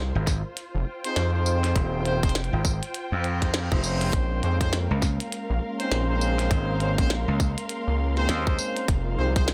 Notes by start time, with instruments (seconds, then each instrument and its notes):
Already playing: analog synth bass C2, string section F4 A#4 C5 F5 C6
0.15 slap bass G#1
0.27 kick, snare, tambourine
0.57 closed hi-hat
0.75 analog synth bass F1
0.86 string section G5
1.04 horn section C4 D#4 F4 G#4 C5, closed hi-hat
1.16 analog synth bass F2, snare, closed hi-hat
1.34 horn section C4 D#4 F4 G#4 C5
1.46 tambourine
1.64 snare, closed hi-hat
1.76 slap bass D#1, kick, closed hi-hat
2.05 horn section C4 D#4 F4 G#4 C5, closed hi-hat
2.23 analog synth bass F1, horn section C4 D#4 F4 G#4 C5, kick, closed hi-hat
2.29 closed hi-hat
2.35 snare, closed hi-hat
2.44 closed hi-hat
2.53 slap bass G#1
2.65 kick, tambourine
2.83 closed hi-hat
2.94 closed hi-hat, reverse cymbal
3.12 slap bass F2
3.24 closed hi-hat
3.42 horn section C4 D#4 F4 G#4 C5, kick, snare, closed hi-hat
3.54 snare, closed hi-hat
3.72 slap bass F1, horn section C4 D#4 F4 G#4 C5, kick
3.84 horn section C4 C#4 D#4 G#4 C5, tambourine
4.01 closed hi-hat
4.13 analog synth bass A#1, analog synth pad G#3 A#3 C#4, string section A#4, kick, closed hi-hat
4.36 string section F5
4.43 analog synth bass F2, horn section C4 C#4 D#4 G#4 C5, closed hi-hat
4.61 horn section C4 C#4 D#4 G#4 C5, kick, closed hi-hat
4.73 snare, closed hi-hat
4.91 slap bass C#2
5.02 kick, snare, tambourine
5.20 closed hi-hat
5.32 closed hi-hat
5.50 analog synth bass A#1
5.63 string section C6
5.80 horn section C4 C#4 D#4 G#4 C5, closed hi-hat
5.91 analog synth bass A#1, snare, closed hi-hat
6.10 horn section C4 C#4 D#4 G#4 C5
6.21 tambourine
6.39 snare, closed hi-hat
6.51 slap bass G#1, kick, closed hi-hat
6.80 horn section C4 C#4 D#4 G#4 C5, closed hi-hat
6.98 analog synth bass A#1, horn section C4 C#4 D#4 G#4 C5, kick, closed hi-hat
7.10 snare, closed hi-hat
7.28 slap bass C#2
7.40 kick, tambourine
7.58 closed hi-hat
7.69 closed hi-hat
7.87 analog synth bass C#2
8.17 horn section C4 C#4 D#4 G#4 C5, snare
8.29 slap bass D#2, snare, closed hi-hat
8.47 horn section C4 C#4 D#4 G#4 C5, kick
8.59 tambourine
8.77 closed hi-hat
8.88 analog synth bass F1, analog synth pad F3 D#4 G#4, string section F4, kick, closed hi-hat
9.18 analog synth bass C2, horn section C4 D#4 F4 G#4 C5
9.36 horn section C4 D#4 F4 G#4 C5, string section C5, kick, closed hi-hat
9.48 snare, closed hi-hat